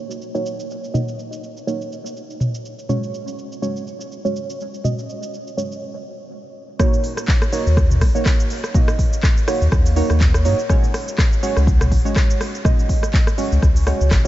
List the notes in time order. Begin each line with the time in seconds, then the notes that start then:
Already playing: A#3 D#4 F#4 C#5
0.11 shaker
0.22 shaker
0.35 A#3 D#4 F#4 C#5, shaker
0.46 shaker
0.60 shaker
0.71 shaker
0.84 shaker
0.94 A#3 D#4 F#4 D#5, mid tom, shaker
1.08 shaker
1.19 shaker
1.33 shaker
1.44 shaker
1.57 shaker
1.67 A#3 D#4 F#4 C#5, shaker
1.81 shaker
1.92 shaker
2.06 shaker
2.17 shaker
2.30 shaker
2.40 mid tom, shaker
2.54 shaker
2.65 shaker
2.79 shaker
2.89 G#3 C#4 F#4 C#5, mid tom, shaker
3.03 shaker
3.14 shaker
3.28 shaker
3.39 shaker
3.52 shaker
3.62 G#3 C#4 F#4 C#5, shaker
3.76 shaker
3.87 shaker
4.01 shaker
4.12 shaker
4.25 G#3 C#4 F#4 C#5, shaker
4.36 shaker
4.50 shaker
4.60 shaker
4.74 shaker
4.84 G#3 C#4 F#4 D#5, mid tom, shaker
4.99 shaker
5.09 shaker
5.23 shaker
5.34 shaker
5.47 shaker
5.57 G#3 C#4 F#4 C#5, shaker
5.72 shaker
6.79 A#3 D#4 F#4 C#5, kick, cross-stick, mid tom, shaker
6.94 shaker
7.04 open hi-hat, shaker
7.17 cross-stick, shaker
7.28 kick, clap, shaker
7.42 cross-stick, shaker
7.52 A#3 D#4 F#4 C#5, open hi-hat, shaker
7.66 D#2, shaker
7.77 kick, cross-stick, shaker
7.91 mid tom, shaker
8.01 A#1, kick, cross-stick, open hi-hat, shaker
8.15 A#3 D#4 F#4 C#5, shaker
8.26 kick, cross-stick, clap, shaker
8.40 shaker
8.50 open hi-hat, shaker
8.64 cross-stick, shaker
8.74 A#3 D#4 F#4 D#5, kick, mid tom, shaker
8.88 cross-stick, shaker
8.99 kick, open hi-hat, shaker
9.13 shaker
9.23 kick, cross-stick, clap, shaker
9.37 shaker
9.47 A#3 D#4 F#4 C#5, cross-stick, open hi-hat, shaker
9.61 D#2, shaker
9.72 D#2, kick, cross-stick, shaker
9.86 open hi-hat, shaker
9.96 A#3 D#4 F#4 C#5, open hi-hat, shaker
10.10 D#2, cross-stick, shaker
10.21 kick, clap, mid tom, shaker
10.34 cross-stick, shaker
10.45 G#2 A#3 D#4 F#4 C#5, open hi-hat, shaker
10.59 shaker
10.69 G#3 C#4 F#4 C#5, kick, cross-stick, mid tom, shaker
10.84 shaker
10.94 cross-stick, open hi-hat, shaker
11.08 shaker
11.18 kick, cross-stick, clap, shaker
11.33 shaker
11.43 G#3 C#4 F#4 C#5, open hi-hat, shaker
11.56 C#2, cross-stick, shaker
11.67 kick, shaker
11.81 cross-stick, mid tom, shaker
11.92 G#1, kick, open hi-hat, shaker
12.05 G#3 C#4 F#4 C#5, shaker
12.16 kick, cross-stick, clap, shaker
12.30 shaker
12.41 cross-stick, open hi-hat, shaker
12.55 shaker
12.65 G#3 C#4 F#4 D#5, kick, cross-stick, mid tom, shaker
12.79 shaker
12.89 kick, open hi-hat, shaker
13.03 cross-stick, shaker
13.14 kick, clap, shaker
13.27 cross-stick, shaker
13.38 G#3 C#4 F#4 C#5, open hi-hat, shaker
13.52 C#2, shaker
13.62 C#2, kick, cross-stick, shaker
13.76 open hi-hat, shaker
13.87 G#3 C#4 F#4 C#5, cross-stick, open hi-hat, shaker
14.01 C#2, shaker
14.11 G#1, kick, cross-stick, clap, mid tom, shaker